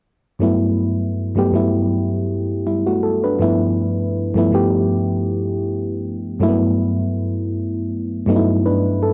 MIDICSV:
0, 0, Header, 1, 2, 480
1, 0, Start_track
1, 0, Key_signature, 1, "major"
1, 0, Tempo, 750000
1, 250, Time_signature, 4, 2, 24, 8
1, 5846, End_track
2, 0, Start_track
2, 0, Title_t, "FM electric piano"
2, 0, Program_c, 0, 5
2, 250, Note_on_c, 0, 43, 68
2, 257, Note_on_c, 0, 54, 61
2, 262, Note_on_c, 0, 57, 60
2, 266, Note_on_c, 0, 59, 61
2, 273, Note_on_c, 0, 64, 72
2, 353, Control_c, 0, 64, 127
2, 812, Note_off_c, 0, 43, 0
2, 815, Note_off_c, 0, 54, 0
2, 818, Note_off_c, 0, 57, 0
2, 820, Note_off_c, 0, 59, 0
2, 823, Note_off_c, 0, 64, 0
2, 864, Note_on_c, 0, 43, 66
2, 870, Note_on_c, 0, 54, 61
2, 875, Note_on_c, 0, 57, 63
2, 881, Note_on_c, 0, 59, 63
2, 887, Note_on_c, 0, 67, 77
2, 963, Note_off_c, 0, 43, 0
2, 966, Note_off_c, 0, 54, 0
2, 969, Note_off_c, 0, 57, 0
2, 972, Note_off_c, 0, 59, 0
2, 972, Note_on_c, 0, 43, 71
2, 975, Note_off_c, 0, 67, 0
2, 980, Note_on_c, 0, 54, 64
2, 985, Note_on_c, 0, 57, 62
2, 991, Note_on_c, 0, 59, 64
2, 995, Note_on_c, 0, 64, 80
2, 1455, Note_off_c, 0, 54, 0
2, 1458, Note_off_c, 0, 57, 0
2, 1461, Note_off_c, 0, 59, 0
2, 1463, Note_off_c, 0, 64, 0
2, 1708, Note_on_c, 0, 64, 57
2, 1709, Note_on_c, 0, 55, 45
2, 1824, Note_off_c, 0, 64, 0
2, 1825, Note_off_c, 0, 55, 0
2, 1834, Note_on_c, 0, 66, 59
2, 1839, Note_on_c, 0, 57, 51
2, 1866, Note_off_c, 0, 43, 0
2, 1931, Note_off_c, 0, 66, 0
2, 1934, Note_off_c, 0, 57, 0
2, 1941, Note_on_c, 0, 69, 54
2, 2061, Note_off_c, 0, 69, 0
2, 2072, Note_on_c, 0, 71, 55
2, 2077, Note_on_c, 0, 62, 44
2, 2170, Note_on_c, 0, 43, 70
2, 2173, Note_on_c, 0, 53, 63
2, 2178, Control_c, 0, 64, 0
2, 2181, Note_on_c, 0, 57, 65
2, 2187, Note_on_c, 0, 59, 68
2, 2191, Note_on_c, 0, 64, 80
2, 2280, Control_c, 0, 64, 127
2, 2295, Note_off_c, 0, 71, 0
2, 2298, Note_off_c, 0, 62, 0
2, 2732, Note_off_c, 0, 43, 0
2, 2734, Note_off_c, 0, 53, 0
2, 2737, Note_off_c, 0, 57, 0
2, 2741, Note_off_c, 0, 59, 0
2, 2742, Note_off_c, 0, 64, 0
2, 2780, Note_on_c, 0, 43, 77
2, 2786, Note_on_c, 0, 53, 68
2, 2791, Note_on_c, 0, 57, 66
2, 2797, Note_on_c, 0, 59, 65
2, 2803, Note_on_c, 0, 64, 80
2, 2880, Note_off_c, 0, 43, 0
2, 2884, Note_off_c, 0, 53, 0
2, 2887, Note_off_c, 0, 57, 0
2, 2887, Note_on_c, 0, 43, 74
2, 2890, Note_off_c, 0, 59, 0
2, 2892, Note_off_c, 0, 64, 0
2, 2894, Note_on_c, 0, 53, 72
2, 2899, Note_on_c, 0, 57, 68
2, 2906, Note_on_c, 0, 59, 66
2, 2911, Note_on_c, 0, 67, 87
2, 3783, Note_off_c, 0, 43, 0
2, 3787, Note_off_c, 0, 53, 0
2, 3789, Note_off_c, 0, 57, 0
2, 3793, Note_off_c, 0, 59, 0
2, 3795, Note_off_c, 0, 67, 0
2, 4092, Note_on_c, 0, 43, 74
2, 4098, Note_on_c, 0, 54, 69
2, 4099, Control_c, 0, 64, 0
2, 4102, Note_on_c, 0, 57, 73
2, 4108, Note_on_c, 0, 58, 58
2, 4115, Note_on_c, 0, 64, 89
2, 4145, Note_off_c, 0, 58, 0
2, 4150, Note_on_c, 0, 59, 73
2, 4225, Control_c, 0, 64, 127
2, 4986, Note_off_c, 0, 43, 0
2, 4989, Note_off_c, 0, 54, 0
2, 4991, Note_off_c, 0, 57, 0
2, 4997, Note_off_c, 0, 64, 0
2, 5014, Note_off_c, 0, 59, 0
2, 5289, Note_on_c, 0, 43, 81
2, 5294, Note_on_c, 0, 54, 71
2, 5300, Note_on_c, 0, 57, 76
2, 5306, Note_on_c, 0, 59, 70
2, 5312, Note_on_c, 0, 63, 67
2, 5347, Note_off_c, 0, 63, 0
2, 5352, Note_on_c, 0, 64, 82
2, 5535, Note_off_c, 0, 57, 0
2, 5538, Note_off_c, 0, 59, 0
2, 5540, Note_on_c, 0, 71, 61
2, 5543, Note_on_c, 0, 62, 52
2, 5561, Note_off_c, 0, 64, 0
2, 5763, Note_off_c, 0, 71, 0
2, 5765, Note_off_c, 0, 62, 0
2, 5777, Note_on_c, 0, 69, 69
2, 5846, Note_off_c, 0, 43, 0
2, 5846, Note_off_c, 0, 54, 0
2, 5846, Note_off_c, 0, 69, 0
2, 5846, End_track
0, 0, End_of_file